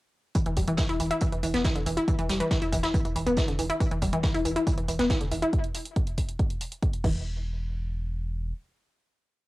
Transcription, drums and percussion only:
0.35 kick loud
0.35 closed hi-hat medium
0.46 closed hi-hat medium
0.57 kick medium
0.57 closed hi-hat medium
0.57 open hi-hat loud
0.68 closed hi-hat medium
0.77 kick loud
0.77 snare loud
0.77 closed hi-hat medium
0.89 open hi-hat medium
0.99 closed hi-hat medium
0.99 open hi-hat loud
1.11 closed hi-hat medium
1.21 kick loud
1.21 closed hi-hat medium
1.32 closed hi-hat medium
1.43 closed hi-hat medium
1.43 open hi-hat loud
1.54 snare soft
1.54 closed hi-hat medium
1.64 kick loud
1.64 snare loud
1.64 closed hi-hat medium
1.76 closed hi-hat medium
1.86 closed hi-hat medium
1.86 open hi-hat loud
1.97 closed hi-hat medium
2.08 kick loud
2.08 closed hi-hat medium
2.18 closed hi-hat soft
2.18 closed hi-hat medium
2.29 snare medium
2.29 closed hi-hat medium
2.29 open hi-hat loud
2.40 closed hi-hat medium
2.51 kick loud
2.51 snare loud
2.51 closed hi-hat medium
2.62 closed hi-hat soft
2.62 closed hi-hat medium
2.73 kick medium
2.73 closed hi-hat medium
2.73 open hi-hat loud
2.83 snare medium
2.83 closed hi-hat medium
2.94 kick loud
2.94 closed hi-hat medium
3.05 closed hi-hat medium
3.05 closed hi-hat soft
3.15 closed hi-hat medium
3.15 open hi-hat loud
3.26 closed hi-hat soft
3.26 closed hi-hat medium
3.36 kick loud
3.36 snare loud
3.36 closed hi-hat medium
3.48 closed hi-hat medium
3.59 closed hi-hat medium
3.59 open hi-hat loud
3.70 closed hi-hat medium
3.80 kick loud
3.80 closed hi-hat medium
3.91 closed hi-hat medium
4.02 kick medium
4.02 closed hi-hat medium
4.02 open hi-hat loud
4.13 closed hi-hat medium
4.23 kick loud
4.23 snare loud
4.23 closed hi-hat medium
4.34 open hi-hat medium
4.45 closed hi-hat medium
4.45 open hi-hat loud
4.56 closed hi-hat medium
4.67 kick loud
4.67 closed hi-hat medium
4.78 closed hi-hat medium
4.88 closed hi-hat medium
4.88 open hi-hat loud
4.99 snare soft
4.99 closed hi-hat medium
5.09 kick loud
5.09 snare loud
5.09 closed hi-hat medium
5.21 closed hi-hat medium
5.32 closed hi-hat medium
5.32 open hi-hat loud
5.42 closed hi-hat medium
5.53 kick loud
5.53 closed hi-hat medium
5.64 closed hi-hat medium
5.75 open hi-hat loud
5.85 closed hi-hat medium
5.96 kick loud
5.96 closed hi-hat medium
6.07 closed hi-hat medium
6.18 kick medium
6.18 open hi-hat loud
6.29 closed hi-hat medium
6.39 kick loud
6.39 closed hi-hat medium
6.50 closed hi-hat medium
6.61 open hi-hat loud
6.72 closed hi-hat medium
6.83 kick loud
6.83 closed hi-hat medium
6.93 closed hi-hat medium
7.04 kick loud
7.04 crash medium

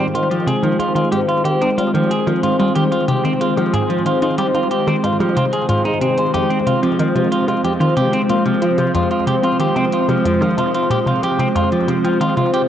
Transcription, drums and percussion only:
0.15 closed hi-hat medium
0.31 closed hi-hat medium
0.48 closed hi-hat medium
0.64 closed hi-hat soft
0.80 closed hi-hat medium
0.97 closed hi-hat medium
1.13 closed hi-hat medium
1.29 closed hi-hat soft
1.45 closed hi-hat medium
1.62 closed hi-hat medium
1.78 closed hi-hat medium
1.94 closed hi-hat soft
2.11 closed hi-hat medium
2.27 closed hi-hat medium
2.27 percussion blips medium
2.43 closed hi-hat medium
2.60 closed hi-hat soft
2.75 closed hi-hat medium
2.92 closed hi-hat medium
3.08 closed hi-hat medium
3.25 closed hi-hat soft
3.41 closed hi-hat medium
3.57 closed hi-hat medium
3.57 percussion blips medium
3.74 closed hi-hat medium
3.90 closed hi-hat soft
4.06 closed hi-hat medium
4.22 closed hi-hat soft
4.38 closed hi-hat medium
4.55 closed hi-hat soft
4.71 closed hi-hat medium
4.88 closed hi-hat medium
4.88 percussion blips medium
5.04 closed hi-hat medium
5.20 closed hi-hat soft
5.20 percussion blips medium
5.37 closed hi-hat medium
5.53 closed hi-hat medium
5.69 closed hi-hat medium
5.85 closed hi-hat soft
6.02 closed hi-hat medium
6.18 closed hi-hat medium
6.34 closed hi-hat medium
6.51 closed hi-hat soft
6.67 closed hi-hat medium
6.83 closed hi-hat soft
6.99 closed hi-hat medium
7.16 closed hi-hat soft
7.32 closed hi-hat medium
7.48 closed hi-hat medium
7.48 percussion blips medium
7.65 closed hi-hat medium
7.81 closed hi-hat soft
7.97 closed hi-hat medium
8.13 closed hi-hat medium
8.30 closed hi-hat medium
8.46 closed hi-hat soft
8.62 closed hi-hat medium
8.78 closed hi-hat medium
8.78 percussion blips medium
8.95 closed hi-hat medium
9.11 closed hi-hat soft
9.27 closed hi-hat medium
9.44 closed hi-hat soft
9.60 closed hi-hat medium
9.76 closed hi-hat soft
9.93 closed hi-hat medium
10.09 closed hi-hat soft
10.09 percussion blips medium
10.25 closed hi-hat medium
10.42 closed hi-hat soft
10.42 percussion blips soft
10.58 closed hi-hat medium
10.74 closed hi-hat medium
10.90 closed hi-hat medium
11.07 closed hi-hat soft
11.23 closed hi-hat medium
11.39 closed hi-hat medium
11.56 closed hi-hat medium
11.72 closed hi-hat soft
11.88 closed hi-hat medium
12.05 closed hi-hat soft
12.21 closed hi-hat medium
12.37 closed hi-hat soft
12.54 closed hi-hat medium

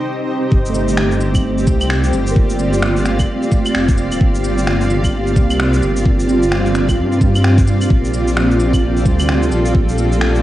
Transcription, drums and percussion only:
0.20 shaker soft
0.42 shaker soft
0.52 kick loud
0.66 shaker soft
0.75 cabasa medium
0.88 shaker medium
0.97 finger snap loud
1.11 shaker soft
1.21 cabasa medium
1.35 kick medium
1.35 cabasa soft
1.35 claves medium
1.35 shaker medium
1.58 shaker soft
1.67 kick loud
1.67 cabasa medium
1.81 claves medium
1.81 shaker medium
1.90 finger snap loud
2.04 shaker soft
2.13 cabasa medium
2.27 shaker medium
2.36 kick loud
2.50 shaker soft
2.59 cabasa medium
2.73 shaker medium
2.82 finger snap loud
2.97 shaker soft
3.05 finger snap medium
3.05 cabasa medium
3.19 kick medium
3.19 cabasa soft
3.19 claves soft
3.19 shaker medium
3.43 shaker soft
3.52 kick loud
3.52 cabasa medium
3.66 claves medium
3.66 shaker medium
3.75 finger snap loud
3.89 kick loud
3.89 shaker soft
3.98 cabasa medium
4.12 cabasa soft
4.12 claves soft
4.12 shaker medium
4.21 kick loud
4.35 shaker soft
4.44 cabasa medium
4.58 shaker medium
4.67 finger snap loud
4.81 shaker soft
4.90 cabasa medium
5.04 kick medium
5.04 cabasa soft
5.04 claves soft
5.04 shaker medium
5.27 shaker soft
5.36 kick loud
5.36 cabasa medium
5.51 claves medium
5.51 shaker medium
5.60 finger snap loud
5.74 shaker soft
5.83 cabasa medium
5.97 shaker medium
6.06 kick loud
6.20 shaker soft
6.29 cabasa medium
6.43 shaker medium
6.52 finger snap loud
6.66 shaker soft
6.75 finger snap medium
6.75 cabasa medium
6.89 kick medium
6.89 cabasa soft
6.89 claves soft
6.89 shaker medium
7.12 shaker soft
7.21 kick loud
7.21 cabasa medium
7.35 claves medium
7.35 shaker medium
7.44 finger snap loud
7.58 kick loud
7.58 shaker soft
7.68 cabasa medium
7.81 cabasa soft
7.81 claves soft
7.81 shaker medium
7.90 kick loud
8.05 shaker soft
8.14 cabasa medium
8.28 shaker medium
8.37 finger snap loud
8.51 shaker soft
8.60 cabasa medium
8.73 kick medium
8.73 cabasa soft
8.73 claves soft
8.73 shaker medium
8.97 shaker soft
9.06 kick loud
9.06 cabasa medium
9.20 claves medium
9.20 shaker medium
9.29 finger snap loud
9.43 shaker soft
9.52 cabasa medium
9.66 shaker medium
9.75 kick loud
9.89 shaker soft
9.98 cabasa medium
10.12 shaker medium
10.21 finger snap loud
10.35 shaker soft

